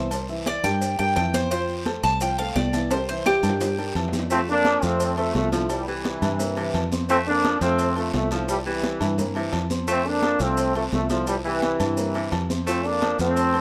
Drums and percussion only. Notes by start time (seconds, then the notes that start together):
0.11 cowbell, low agogo, long guiro, maracas
0.28 high conga, maracas
0.46 cowbell, high conga, low timbale, low agogo, short guiro, maracas
0.64 low conga, low agogo, short guiro, maracas
0.81 cowbell, high conga, long guiro, maracas
0.99 cowbell, high conga, low agogo, maracas
1.16 cowbell, high conga, low timbale, low agogo, short guiro, maracas
1.34 high conga, short guiro, maracas
1.51 cowbell, high conga, low agogo, long guiro, maracas
1.68 high conga, maracas
1.86 cowbell, high conga, low timbale, low agogo, short guiro, maracas
2.03 cowbell, high conga, short guiro, maracas
2.21 cowbell, high conga, low agogo, long guiro, maracas
2.38 high conga, low agogo, maracas
2.56 cowbell, high conga, low timbale, short guiro, maracas
2.73 cowbell, high conga, low agogo, short guiro, maracas
2.91 cowbell, high conga, high timbale, low agogo, long guiro, maracas
3.08 high conga, maracas
3.26 cowbell, high conga, low timbale, low agogo, short guiro, maracas
3.43 low conga, low agogo, short guiro, maracas
3.49 low timbale
3.60 cowbell, high bongo, high conga, low timbale, long guiro, maracas
3.78 cowbell, low bongo, high conga, low agogo, maracas
3.95 cowbell, high conga, low agogo, short guiro, maracas
4.08 low timbale
4.13 low bongo, high conga, short guiro, maracas
4.19 low timbale
4.30 cowbell, high conga, low agogo, long guiro, maracas
4.48 high conga, maracas
4.65 cowbell, high conga, low timbale, low agogo, short guiro, maracas
4.82 cowbell, high conga, short guiro, maracas
5.00 cowbell, high conga, low agogo, long guiro, maracas
5.17 high conga, low agogo, maracas
5.35 cowbell, high conga, low timbale, short guiro, maracas
5.52 cowbell, high conga, low agogo, short guiro, maracas
5.69 cowbell, high conga, low agogo, long guiro, maracas
5.88 high conga, maracas
6.04 cowbell, high conga, low timbale, low agogo, short guiro, maracas
6.22 low conga, low agogo, short guiro, maracas
6.39 cowbell, high conga, long guiro, maracas
6.57 cowbell, high conga, low agogo, maracas
6.74 cowbell, high conga, low timbale, low agogo, short guiro, maracas
6.92 high conga, short guiro, maracas
7.09 cowbell, high conga, low agogo, long guiro, maracas
7.26 high conga, maracas
7.44 cowbell, high conga, low timbale, low agogo, short guiro, maracas
7.61 cowbell, high conga, short guiro, maracas
7.79 cowbell, high conga, low agogo, long guiro, maracas
7.96 high conga, low agogo, maracas
8.13 cowbell, high conga, low timbale, short guiro, maracas
8.31 cowbell, high conga, low agogo, short guiro, maracas
8.48 cowbell, low agogo, long guiro, maracas
8.66 high conga, maracas
8.83 cowbell, high conga, low timbale, low agogo, short guiro, maracas
9.01 low conga, low agogo, short guiro, maracas
9.18 cowbell, high conga, low conga, long guiro, maracas
9.35 cowbell, high conga, low agogo, maracas
9.53 cowbell, high conga, low timbale, low agogo, short guiro, maracas
9.70 high conga, short guiro, maracas
9.88 cowbell, low agogo, long guiro, maracas
10.05 high conga, maracas
10.22 cowbell, high conga, low timbale, low agogo, short guiro, maracas
10.39 cowbell, high conga, short guiro, maracas
10.57 cowbell, high conga, low agogo, long guiro, maracas
10.75 high conga, low agogo, maracas
10.92 cowbell, high conga, low timbale, short guiro, maracas
11.10 cowbell, high conga, low agogo, short guiro, maracas
11.27 cowbell, high conga, low agogo, long guiro, maracas
11.45 high conga, maracas
11.62 cowbell, high conga, low timbale, low agogo, short guiro, maracas
11.80 low conga, low agogo, short guiro, maracas
11.97 cowbell, high conga, long guiro, maracas
12.14 cowbell, high conga, low agogo, maracas
12.32 cowbell, high conga, low timbale, low agogo, short guiro, maracas
12.50 high conga, short guiro, maracas
12.67 cowbell, high conga, low agogo, long guiro, maracas
12.85 high conga, maracas
13.02 cowbell, high conga, low timbale, low agogo, short guiro, maracas
13.19 cowbell, high conga, short guiro, maracas
13.37 cowbell, high conga, low agogo, long guiro, maracas
13.54 high conga, low agogo, maracas